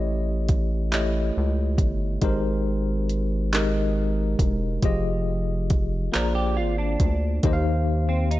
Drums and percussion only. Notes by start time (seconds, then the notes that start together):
0.49 kick, closed hi-hat
0.92 clap, closed hi-hat
1.78 kick, closed hi-hat
2.22 kick, closed hi-hat
3.09 closed hi-hat
3.53 clap, closed hi-hat
4.39 kick, closed hi-hat
4.83 kick, closed hi-hat
5.70 kick, closed hi-hat
6.14 clap, closed hi-hat
7.00 kick, closed hi-hat
7.43 kick, closed hi-hat
8.31 closed hi-hat